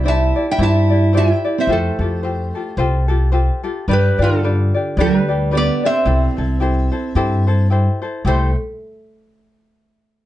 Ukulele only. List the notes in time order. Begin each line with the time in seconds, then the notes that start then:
0.04 E4 G4 C5 D5
0.36 E4 G4 D5
0.59 E4 G4 C5 D5
0.90 E4 G4 D5
1.13 E4 G4 C5 D5
1.45 E4 G4 D5
1.69 F4 G4 A4 C5
2.00 F4 G4 A4
2.23 F4 G4 A4 C5
2.55 F4 G4 A4
2.78 F4 G4 A4 C5
3.08 F4 G4 A4
3.32 F4 G4 A4 C5
3.63 F4 G4 A4
3.88 D4 G4 B4 D5
4.19 D4 G4 D5
4.43 D4 G4 B4 D5
4.74 D4 G4 D5
4.98 D4 G4 B4 D5
5.28 D4 G4 D5
5.51 D4 G4 B4 D5
5.83 D4 G4 D5
6.05 E4 G4 A4 C5
6.37 E4 A4 C5
6.60 E4 G4 A4 C5
6.92 E4 A4 C5
7.16 E4 G4 A4 C5
7.47 E4 A4 C5
7.70 E4 G4 A4 C5
8.02 E4 A4 C5
8.25 E4 G4 A4 C5